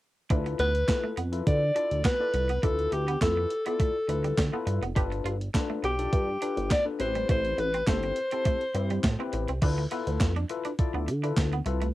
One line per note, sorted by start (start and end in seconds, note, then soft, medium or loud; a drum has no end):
0.30 0.55 D2 loud
0.30 0.40 D4 medium
0.30 0.71 E4 medium
0.30 0.71 F4 medium
0.30 0.71 A4 medium
0.30 0.71 B4 medium
0.30 kick loud
0.30 closed hi-hat medium
0.46 muted clean electric guitar stroke soft
0.46 closed hi-hat soft
0.59 0.84 D2 loud
0.59 0.69 B3 medium
0.59 1.14 B4 loud
0.59 closed hi-hat medium
0.75 closed hi-hat soft
0.88 1.18 E4 medium
0.88 1.18 F4 medium
0.88 1.18 A4 medium
0.88 1.18 B4 medium
0.88 muted clean electric guitar stroke soft
0.88 kick loud
0.88 snare loud
0.88 clap medium
0.88 closed hi-hat medium
1.04 1.12 A3 medium
1.17 1.42 F2 loud
1.17 1.27 B3 medium
1.17 closed hi-hat medium
1.32 1.62 E4 medium
1.32 1.62 F4 medium
1.32 1.63 A4 medium
1.32 1.63 B4 medium
1.32 closed hi-hat medium
1.47 1.71 D3 loud
1.47 2.01 D5 loud
1.47 kick loud
1.47 closed hi-hat medium
1.75 1.85 D4 medium
1.75 2.05 E4 medium
1.75 2.06 F4 medium
1.75 2.06 A4 medium
1.75 2.06 D5 medium
1.75 closed hi-hat medium
1.91 2.03 D2 medium
1.91 closed hi-hat soft
2.05 2.14 B3 medium
2.05 2.65 B4 loud
2.05 kick loud
2.05 snare loud
2.05 clap medium
2.05 closed hi-hat medium
2.20 2.50 E4 medium
2.20 2.50 F4 medium
2.20 2.50 A4 medium
2.20 2.50 D5 medium
2.34 2.59 C2 medium
2.34 muted clean electric guitar stroke soft
2.34 closed hi-hat medium
2.49 2.58 B3 medium
2.49 closed hi-hat soft
2.63 2.88 D2 loud
2.63 2.73 D4 medium
2.63 3.03 E4 medium
2.63 3.04 F4 medium
2.63 3.04 A4 medium
2.63 2.94 A4 loud
2.63 3.04 B4 medium
2.63 kick loud
2.63 closed hi-hat medium
2.79 closed hi-hat soft
2.92 3.17 D2 loud
2.92 3.21 G4 medium
2.92 muted clean electric guitar stroke soft
2.92 closed hi-hat medium
3.08 3.16 B3 medium
3.08 closed hi-hat medium
3.21 3.46 F2 medium
3.21 3.31 A3 medium
3.21 3.51 E4 medium
3.21 3.52 F4 medium
3.21 3.52 A4 medium
3.21 3.63 A4 medium
3.21 3.52 B4 medium
3.21 kick loud
3.21 snare loud
3.21 clap medium
3.21 closed hi-hat medium
3.37 muted clean electric guitar stroke soft
3.50 closed hi-hat medium
3.66 3.75 B3 medium
3.66 3.96 E4 medium
3.66 3.96 F4 medium
3.66 3.96 A4 medium
3.66 4.64 A4 medium
3.66 3.96 D5 medium
3.66 closed hi-hat medium
3.80 3.90 A3 medium
3.80 kick loud
3.80 closed hi-hat medium
4.08 4.33 D2 medium
4.08 4.38 E4 medium
4.08 4.38 F4 medium
4.08 4.39 A4 medium
4.08 4.39 B4 medium
4.08 muted clean electric guitar stroke soft
4.08 closed hi-hat medium
4.24 4.33 G3 medium
4.24 closed hi-hat soft
4.38 4.51 D3 medium
4.38 kick loud
4.38 snare loud
4.38 clap medium
4.38 closed hi-hat medium
4.53 4.62 B3 medium
4.53 4.83 E4 medium
4.53 4.83 F4 medium
4.53 4.83 A4 medium
4.53 4.83 B4 loud
4.67 4.80 G2 medium
4.67 muted clean electric guitar stroke soft
4.67 closed hi-hat medium
4.82 4.94 F1 medium
4.82 4.91 B3 medium
4.82 closed hi-hat soft
4.95 5.21 G1 loud
4.95 5.36 D4 medium
4.95 5.36 F4 medium
4.95 5.06 G4 medium
4.95 5.37 A4 medium
4.95 5.37 B4 medium
4.95 kick loud
4.95 closed hi-hat medium
5.12 muted clean electric guitar stroke soft
5.12 closed hi-hat soft
5.24 5.49 G1 medium
5.24 5.35 F4 medium
5.24 closed hi-hat medium
5.41 closed hi-hat soft
5.54 5.84 D4 medium
5.54 5.84 F4 medium
5.54 5.84 A4 medium
5.54 5.84 B4 loud
5.54 muted clean electric guitar stroke soft
5.54 kick loud
5.54 snare loud
5.54 clap medium
5.54 closed hi-hat medium
5.70 5.78 A3 medium
5.83 6.08 B1 medium
5.83 5.93 B3 medium
5.83 6.67 G4 medium
5.83 closed hi-hat medium
5.99 6.29 D4 medium
5.99 6.29 F4 medium
5.99 6.29 A4 medium
5.99 6.29 D5 medium
5.99 closed hi-hat medium
6.13 6.37 G2 loud
6.13 kick loud
6.13 closed hi-hat medium
6.41 6.71 D4 medium
6.41 6.52 D4 medium
6.41 6.72 F4 medium
6.41 6.72 A4 medium
6.41 6.72 B4 medium
6.41 closed hi-hat medium
6.57 6.69 G1 medium
6.57 closed hi-hat soft
6.71 6.81 B3 medium
6.71 6.85 D5 loud
6.71 kick loud
6.71 snare loud
6.71 clap medium
6.71 closed hi-hat medium
6.85 6.99 D4 medium
6.85 6.99 F4 medium
6.85 7.00 A4 medium
6.85 6.99 B4 medium
6.99 7.24 A1 loud
6.99 7.70 C4 medium
6.99 7.70 E4 medium
6.99 7.71 G4 medium
6.99 7.71 B4 medium
6.99 7.28 C5 medium
6.99 muted clean electric guitar stroke soft
6.99 closed hi-hat medium
7.15 7.24 G3 medium
7.15 closed hi-hat soft
7.29 7.54 A1 loud
7.29 7.39 A3 medium
7.29 7.61 C5 loud
7.29 kick loud
7.29 closed hi-hat medium
7.45 closed hi-hat soft
7.58 7.83 A1 loud
7.58 7.88 B4 loud
7.58 muted clean electric guitar stroke soft
7.58 closed hi-hat medium
7.74 7.83 C4 medium
7.74 closed hi-hat soft
7.87 8.12 G1 medium
7.87 7.98 A3 medium
7.87 8.17 C4 medium
7.87 8.17 E4 medium
7.87 8.17 G4 medium
7.87 8.18 A4 medium
7.87 9.30 C5 medium
7.87 kick loud
7.87 snare loud
7.87 clap medium
7.87 closed hi-hat medium
8.03 muted clean electric guitar stroke soft
8.03 closed hi-hat soft
8.16 closed hi-hat medium
8.31 8.41 C4 medium
8.31 8.62 C4 medium
8.31 8.62 E4 medium
8.31 8.62 G4 medium
8.31 8.62 A4 medium
8.31 closed hi-hat medium
8.45 8.55 A3 medium
8.45 kick loud
8.45 closed hi-hat medium
8.61 closed hi-hat soft
8.74 8.99 G2 medium
8.74 9.04 C4 medium
8.74 9.05 E4 medium
8.74 9.05 G4 medium
8.74 9.05 C5 medium
8.74 muted clean electric guitar stroke soft
8.74 closed hi-hat medium
8.90 8.99 G3 medium
8.90 closed hi-hat soft
9.04 9.17 A2 medium
9.04 kick loud
9.04 snare loud
9.04 clap medium
9.04 closed hi-hat medium
9.19 9.49 C4 medium
9.19 9.28 C4 medium
9.19 9.49 E4 medium
9.19 9.49 G4 medium
9.19 9.49 B4 loud
9.33 9.46 A1 medium
9.33 muted clean electric guitar stroke soft
9.33 closed hi-hat medium
9.48 9.60 C2 medium
9.48 9.57 C4 medium
9.48 closed hi-hat soft
9.62 9.87 D2 loud
9.62 9.72 D4 medium
9.62 9.82 E4 medium
9.62 9.83 F4 medium
9.62 9.83 A4 medium
9.62 9.83 B4 loud
9.62 kick loud
9.62 closed hi-hat medium
9.62 crash medium
9.78 muted clean electric guitar stroke soft
9.91 10.01 B3 medium
9.91 10.32 E4 medium
9.91 10.32 F4 medium
9.91 10.32 A4 medium
9.91 10.32 B4 loud
9.91 closed hi-hat medium
10.07 10.19 D2 loud
10.07 closed hi-hat medium
10.20 10.45 F2 loud
10.20 kick loud
10.20 snare loud
10.20 clap medium
10.20 closed hi-hat medium
10.36 10.45 D4 medium
10.36 closed hi-hat soft
10.49 10.70 E4 medium
10.49 10.70 F4 medium
10.49 10.70 A4 medium
10.49 10.70 B4 medium
10.49 muted clean electric guitar stroke soft
10.49 closed hi-hat medium
10.65 10.74 D4 medium
10.65 closed hi-hat medium
10.79 11.09 E4 medium
10.79 11.09 F4 medium
10.79 11.09 A4 medium
10.79 11.09 D5 medium
10.79 kick loud
10.79 closed hi-hat medium
10.94 11.09 D2 medium
10.94 11.03 B3 medium
11.08 11.32 D3 loud
11.08 muted clean electric guitar stroke soft
11.08 closed hi-hat medium
11.23 11.32 D4 medium
11.23 11.53 E4 medium
11.23 11.53 F4 medium
11.23 11.53 A4 medium
11.23 11.53 B4 medium
11.23 closed hi-hat soft
11.37 11.62 D2 medium
11.37 kick loud
11.37 snare loud
11.37 clap medium
11.37 closed hi-hat medium
11.53 11.61 B3 medium
11.53 closed hi-hat soft
11.66 11.91 C2 medium
11.66 11.86 E4 medium
11.66 11.87 F4 medium
11.66 11.87 A4 medium
11.66 11.87 B4 medium
11.66 muted clean electric guitar stroke soft
11.66 closed hi-hat medium
11.82 11.90 A3 medium
11.82 closed hi-hat soft